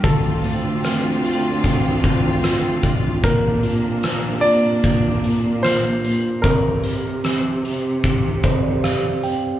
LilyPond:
<<
  \new Staff \with { instrumentName = "Grand piano" } { \time 4/4 \key bes \major \tempo 4 = 75 a'4 r2. | bes'4. d''4. c''4 | bes'4 r2. | }
  \new Staff \with { instrumentName = "Tine electric piano" } { \time 4/4 \key bes \major << { r1 | r1 | r2 r8 c''16 d''16 f''8 g''8 | } \\ { d8 a8 c'8 f'8 c'4 f'4 | bes8 f'8 bes8 f'8 bes4 f'4 | c'8 g'8 c'8 g'8 c'4 g'4 | } >> }
  \new Staff \with { instrumentName = "String section" } { \time 4/4 \key bes \major <d c' f'>1 | <c bes d'>1 | r1 | }
  \new Staff \with { instrumentName = "Cello section" } { \clef bass \time 4/4 \key bes \major d,1 | bes,2 bes,4. bes,8 | c1 | }
  \new DrumStaff \with { instrumentName = "Drums" } \drummode { \time 4/4 <hh bd>16 hh16 hh8 <hh ss>8 hh8 <hh bd>8 <hh bd>8 <hh ss>8 <hh bd>8 | <hh bd>8 hh8 <hh ss>8 hh8 <hh bd>8 hh8 <hh ss>8 hh8 | <hh bd>8 hh8 <hh ss>8 hh8 <hh bd>8 <hh bd>8 <hh ss>8 hh8 | }
>>